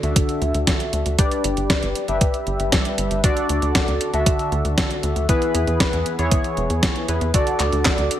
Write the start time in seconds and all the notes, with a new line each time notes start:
0.03 D2 D3 D4 F#4 A4 E5, closed hi-hat
0.16 kick, closed hi-hat
0.29 closed hi-hat
0.41 D2, closed hi-hat
0.54 D2, closed hi-hat
0.67 kick, snare, closed hi-hat
0.80 closed hi-hat
0.93 D2, closed hi-hat
1.06 D2, closed hi-hat
1.19 G3 D4 G4 B4 D5, kick, closed hi-hat
1.31 closed hi-hat
1.44 G1, closed hi-hat
1.57 G1, closed hi-hat
1.70 kick, snare, closed hi-hat
1.83 G1, closed hi-hat
1.95 closed hi-hat
2.08 G1 G3 D4 G4 B4 E5, closed hi-hat
2.21 kick, closed hi-hat
2.34 closed hi-hat
2.47 G1, closed hi-hat
2.59 G1, closed hi-hat
2.72 kick, snare, closed hi-hat
2.85 closed hi-hat
2.98 G1, closed hi-hat
3.11 G1, closed hi-hat
3.24 D3 D4 F#4 A4 D5, kick, closed hi-hat
3.37 closed hi-hat
3.49 D2, closed hi-hat
3.62 D2, closed hi-hat
3.75 kick, snare, closed hi-hat
3.88 D2, closed hi-hat
4.01 closed hi-hat
4.13 D2 D3 D4 F#4 A4 E5, closed hi-hat
4.26 kick, closed hi-hat
4.39 closed hi-hat
4.52 D2, closed hi-hat
4.65 D2, closed hi-hat
4.78 kick, snare, closed hi-hat
4.91 closed hi-hat
5.03 D2, closed hi-hat
5.16 D2, closed hi-hat
5.29 E3 B3 E4 G#4 B4, kick, closed hi-hat
5.42 closed hi-hat
5.55 E2, closed hi-hat
5.67 E2, closed hi-hat
5.80 kick, snare, closed hi-hat
5.93 E2, closed hi-hat
6.06 closed hi-hat
6.18 E2 E3 B3 E4 G#4 C#5, closed hi-hat
6.32 kick, closed hi-hat
6.44 closed hi-hat
6.57 E1, closed hi-hat
6.70 E2, closed hi-hat
6.83 kick, snare, closed hi-hat
6.96 closed hi-hat
7.08 E2 B3 E4 G#4 B4, closed hi-hat
7.21 E2, closed hi-hat
7.34 D3 D4 F#4 A4 D5, kick, closed hi-hat
7.47 closed hi-hat
7.60 D2, clap, closed hi-hat
7.72 D2, closed hi-hat
7.85 kick, snare, clap, closed hi-hat
7.98 D2, closed hi-hat
8.11 closed hi-hat